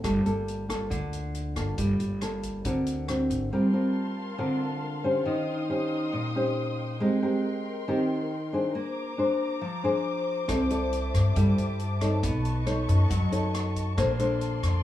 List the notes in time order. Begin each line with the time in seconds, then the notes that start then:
0.04 G1 G3 A#3 F4 A4, kick, cross-stick, closed hi-hat
0.25 G1 A#3 F4 A4, closed hi-hat
0.48 closed hi-hat
0.69 A#3 F4 A4, kick, cross-stick, closed hi-hat
0.90 D2 D3, kick, closed hi-hat
1.13 closed hi-hat
1.35 closed hi-hat
1.56 G1 A#3 F4 A4, kick, cross-stick, closed hi-hat
1.78 G1 G3, kick, closed hi-hat
2.00 G1, closed hi-hat
2.21 A#3 F4 A4, cross-stick, closed hi-hat
2.43 kick, closed hi-hat
2.65 D2 D3 C4 F#4 A#4, kick, closed hi-hat
2.87 closed hi-hat
3.08 C4 F#4 A#4, cross-stick, closed hi-hat
3.30 G#1, kick, closed hi-hat
3.52 G3 C4 F4 A#4 F5 A5 C6
3.73 C4 F4 A#4
4.38 D3 C4 F4 A#4
5.04 C#4 G4 C5
5.25 D#3 D#4 G5 C6 D#6
5.69 C#4 G4 C5
6.13 A#2
6.36 C#4 G4 C5
7.00 G#3 C4 G4 A#4 C6
7.22 C4 G4 A#4
7.88 D#3 C4 G4 A#4
8.53 D4 G#4 C5
8.75 A#3 C5 A#5 D6
9.18 D4 G#4 C5
9.61 F3
9.83 D4 G#4 C5
10.48 C2 C4 E4 A4 D5 E5 A5, kick, cross-stick, closed hi-hat
10.70 E4 A4 D5, closed hi-hat
10.93 closed hi-hat
11.14 G2, kick, cross-stick, closed hi-hat
11.36 G2 G3 E4 A4 D5, kick, closed hi-hat
11.58 closed hi-hat
11.80 closed hi-hat
12.01 D#4 A4 C#5, kick, cross-stick, closed hi-hat
12.23 B1 B3 B4 D#5 C#6, kick, closed hi-hat
12.45 closed hi-hat
12.66 D#4 A4 C#5, cross-stick, closed hi-hat
12.89 F#2, kick, closed hi-hat
13.10 F#2 F#3, kick, closed hi-hat
13.32 F#2 D#4 A4 C#5, closed hi-hat
13.54 cross-stick, closed hi-hat
13.76 kick, closed hi-hat
13.97 A#1 A#3 D4 A4 C5 D5 C6, kick, cross-stick, closed hi-hat
14.19 D4 A4 C5, closed hi-hat
14.41 closed hi-hat
14.63 F2, kick, cross-stick, closed hi-hat